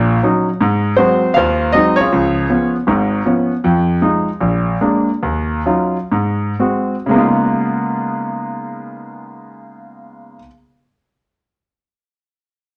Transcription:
0.00 0.17 A#1 medium
0.00 0.17 A#2 medium
0.23 0.48 F#3 medium
0.23 0.48 C#4 soft
0.23 0.49 D#4 medium
0.61 0.93 G#2 medium
0.97 1.24 F#3 medium
0.97 1.24 G#3 medium
0.97 1.33 C4 medium
0.97 1.33 F#4 medium
0.97 1.32 C5 medium
1.34 1.69 D#2 medium
1.34 1.72 F4 medium
1.34 1.72 C5 medium
1.34 1.70 F5 medium
1.72 1.99 F#3 medium
1.72 2.00 G#3 soft
1.72 2.00 C4 medium
1.72 1.98 D#5 medium
1.77 1.98 D#4 medium
1.96 2.69 C#5 loud
2.00 2.48 C#4 medium
2.00 2.71 F4 medium
2.00 2.71 G#4 medium
2.12 2.45 C#2 medium
2.12 2.45 F3 medium
2.49 2.75 F3 medium
2.49 2.75 B3 soft
2.49 2.75 C#4 medium
2.87 3.20 G#1 medium
2.87 3.20 G#2 medium
3.25 3.51 F3 medium
3.25 3.51 B3 soft
3.25 3.51 C#4 medium
3.64 3.97 F2 medium
3.64 3.97 F3 medium
4.01 4.27 F3 soft
4.01 4.28 G#3 soft
4.01 4.28 D#4 medium
4.40 4.75 A#1 medium
4.81 5.08 G#3 soft
4.81 5.08 A#3 soft
4.81 5.08 D4 medium
5.23 5.59 D#2 medium
5.66 5.96 F#3 soft
5.66 5.96 C#4 soft
5.66 5.96 D#4 soft
5.66 5.96 F4 medium
6.12 6.53 G#2 medium
6.59 6.94 G#3 soft
6.59 6.94 C4 soft
6.59 6.94 F#4 soft
7.06 10.35 C#3 medium
7.06 10.38 G#3 medium
7.11 10.40 A#3 medium
7.11 10.42 B3 medium
7.16 10.45 D#4 medium
7.16 10.47 F4 medium

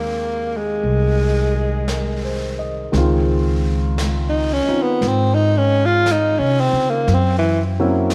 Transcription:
0.00 0.80 D#2 medium
0.00 2.91 D#3 soft
0.00 2.92 G#3 soft
0.00 0.59 A#3 medium
0.00 2.94 A#3 soft
0.00 2.93 C4 soft
0.00 2.97 G4 medium
0.57 2.64 G#3 medium
0.83 2.89 C2 medium
0.83 brush sweep soft
1.55 2.09 G#4 soft
1.88 2.56 A#4 soft
1.88 brush sweep soft
1.88 snare soft
1.88 hi-hat pedal medium
2.24 2.79 C5 soft
2.59 3.13 D#5 soft
2.92 4.63 C#2 medium
2.92 7.06 D#3 medium
2.92 7.07 G#3 soft
2.92 4.67 C4 soft
2.92 brush sweep soft
2.92 snare soft
2.97 4.69 F4 medium
3.98 brush sweep soft
3.98 snare soft
3.98 hi-hat pedal soft
4.29 4.54 D#4 medium
4.53 4.84 C#4 medium
4.68 7.08 C4 soft
4.68 7.08 D#4 soft
4.68 7.09 F4 soft
4.68 muted upright bass stroke soft
4.82 5.10 B3 medium
5.01 6.35 G#2 medium
5.01 brush sweep soft
5.01 snare soft
5.08 5.36 C4 medium
5.34 5.59 D#4 medium
5.58 5.87 C#4 medium
5.86 6.14 F4 medium
6.06 brush sweep soft
6.06 snare soft
6.06 hi-hat pedal medium
6.12 6.40 D#4 medium
6.38 6.71 C3 medium
6.38 6.62 C#4 medium
6.61 6.92 C4 medium
6.73 7.05 C#3 medium
6.90 7.16 A#3 medium
7.07 8.15 F#2 medium
7.07 brush sweep soft
7.07 snare soft
7.14 7.38 C4 medium
7.39 7.60 E3 medium
7.79 8.15 F#3 medium
7.79 8.15 A#3 soft
7.79 8.15 C4 soft
7.79 8.15 C#4 soft
7.79 8.15 E4 medium
8.10 brush sweep soft
8.10 snare soft
8.10 hi-hat pedal medium

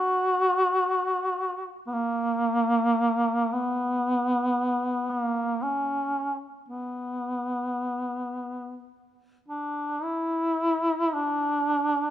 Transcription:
0.00 1.69 F#4 medium
1.87 1.95 B3 medium
1.94 3.55 A#3 medium
3.53 5.12 B3 medium
5.10 5.64 A#3 medium
5.63 6.43 C#4 medium
6.69 8.86 B3 medium
9.48 10.04 D4 medium
10.03 11.15 E4 medium
11.13 12.10 D4 medium

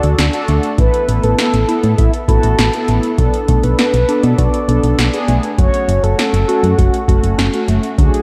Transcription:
0.00 0.15 D2 loud
0.00 0.26 D4 medium
0.00 0.26 F#4 medium
0.00 0.26 A4 medium
0.00 0.44 D5 loud
0.00 closed hi-hat medium
0.18 0.29 D2 medium
0.18 0.34 D4 medium
0.18 snare loud
0.18 closed hi-hat medium
0.33 0.71 D4 medium
0.33 0.71 F#4 medium
0.33 0.71 A4 loud
0.33 closed hi-hat medium
0.48 0.59 D2 loud
0.48 0.65 A3 medium
0.48 closed hi-hat medium
0.63 closed hi-hat soft
0.78 0.89 A1 loud
0.78 0.94 E3 medium
0.78 1.53 B3 medium
0.78 1.53 E4 medium
0.78 1.53 A4 medium
0.78 1.25 B4 loud
0.78 kick loud
0.78 closed hi-hat medium
0.94 closed hi-hat medium
1.09 1.19 A1 loud
1.09 1.25 A3 medium
1.09 closed hi-hat medium
1.23 1.34 A1 loud
1.23 1.37 A4 loud
1.23 closed hi-hat medium
1.38 1.54 B3 medium
1.38 1.94 A4 loud
1.38 snare loud
1.38 closed hi-hat medium
1.54 1.65 A1 medium
1.54 closed hi-hat medium
1.68 2.18 B3 medium
1.68 1.84 E4 medium
1.68 2.18 E4 medium
1.68 2.18 A4 medium
1.68 closed hi-hat medium
1.83 1.94 A2 loud
1.83 closed hi-hat medium
1.98 2.09 A1 loud
1.98 2.11 E4 medium
1.98 2.14 E5 medium
1.98 kick medium
1.98 closed hi-hat medium
2.14 closed hi-hat soft
2.28 2.39 A1 loud
2.28 2.66 B3 medium
2.28 2.66 E4 medium
2.28 2.44 E4 medium
2.28 2.66 F#4 medium
2.28 2.84 A4 medium
2.28 kick medium
2.28 closed hi-hat medium
2.43 2.55 A1 loud
2.43 closed hi-hat medium
2.58 2.70 A1 loud
2.58 2.74 B3 medium
2.58 snare loud
2.58 closed hi-hat medium
2.73 3.11 B3 medium
2.73 3.11 E4 medium
2.73 3.11 A4 medium
2.73 closed hi-hat medium
2.88 2.99 A1 loud
2.88 3.04 A3 medium
2.88 closed hi-hat medium
3.03 closed hi-hat medium
3.18 3.29 B1 loud
3.18 3.34 F#3 medium
3.18 3.93 B3 medium
3.18 3.93 D4 medium
3.18 3.65 A4 medium
3.18 3.93 A4 medium
3.18 kick loud
3.18 closed hi-hat medium
3.34 closed hi-hat medium
3.48 3.59 B1 loud
3.48 3.64 A3 medium
3.48 kick loud
3.48 closed hi-hat medium
3.63 3.74 B1 medium
3.63 3.77 B4 medium
3.63 closed hi-hat soft
3.78 3.94 B3 medium
3.78 4.39 B4 loud
3.78 snare loud
3.78 closed hi-hat medium
3.94 4.05 B1 loud
3.94 closed hi-hat medium
4.08 4.58 B3 medium
4.08 4.24 D4 medium
4.08 4.58 D4 medium
4.08 4.58 A4 medium
4.08 closed hi-hat medium
4.23 4.34 B2 loud
4.23 closed hi-hat medium
4.38 4.49 B1 loud
4.38 4.54 F#4 medium
4.38 5.28 D5 loud
4.38 kick medium
4.38 closed hi-hat medium
4.54 closed hi-hat soft
4.68 4.79 B1 loud
4.68 5.06 B3 medium
4.68 5.06 D4 medium
4.68 4.84 D4 medium
4.68 5.06 A4 medium
4.68 closed hi-hat medium
4.83 4.94 B1 medium
4.83 closed hi-hat medium
4.98 5.09 B1 loud
4.98 5.14 B3 medium
4.98 snare loud
4.98 closed hi-hat medium
5.13 5.51 B3 medium
5.13 5.51 D4 medium
5.13 5.51 G#4 loud
5.13 closed hi-hat medium
5.28 5.39 B1 loud
5.28 5.45 A3 medium
5.28 closed hi-hat medium
5.43 closed hi-hat soft
5.58 5.69 F#1 loud
5.58 5.74 F#3 medium
5.58 6.33 A3 medium
5.58 6.33 C#4 medium
5.58 6.33 F#4 medium
5.58 6.05 C#5 loud
5.58 kick loud
5.58 closed hi-hat medium
5.74 closed hi-hat medium
5.88 5.99 F#1 loud
5.88 6.04 A3 medium
5.88 closed hi-hat medium
6.03 6.14 F#1 loud
6.03 6.18 A4 loud
6.03 closed hi-hat soft
6.18 6.34 C#4 medium
6.18 6.80 A4 loud
6.18 snare loud
6.18 closed hi-hat medium
6.33 6.44 F#1 medium
6.33 closed hi-hat medium
6.48 6.98 A3 medium
6.48 6.98 C#4 medium
6.48 6.64 F#4 medium
6.48 6.98 F#4 medium
6.48 closed hi-hat medium
6.63 6.74 F#2 loud
6.63 closed hi-hat medium
6.78 6.89 F#1 loud
6.78 7.10 F#4 medium
6.78 6.94 F#5 medium
6.78 kick medium
6.78 closed hi-hat medium
6.94 closed hi-hat soft
7.08 7.19 F#1 loud
7.08 7.46 A3 medium
7.08 7.46 C#4 medium
7.08 7.24 F#4 medium
7.08 7.46 F#4 medium
7.08 7.68 A4 medium
7.08 kick medium
7.08 closed hi-hat medium
7.23 7.34 F#1 medium
7.23 closed hi-hat medium
7.38 7.49 F#1 loud
7.38 7.54 C#4 medium
7.38 snare loud
7.38 closed hi-hat medium
7.54 7.91 A3 medium
7.54 7.91 C#4 medium
7.54 7.91 F#4 medium
7.54 closed hi-hat medium
7.68 7.79 F#1 loud
7.68 7.84 A3 medium
7.68 closed hi-hat medium
7.83 closed hi-hat soft
7.98 8.09 D2 loud
7.98 8.14 F#3 medium
7.98 8.22 A3 medium
7.98 8.22 D4 medium
7.98 8.22 F#4 medium
7.98 8.22 G#4 loud
7.98 kick loud
7.98 closed hi-hat medium
8.14 closed hi-hat medium

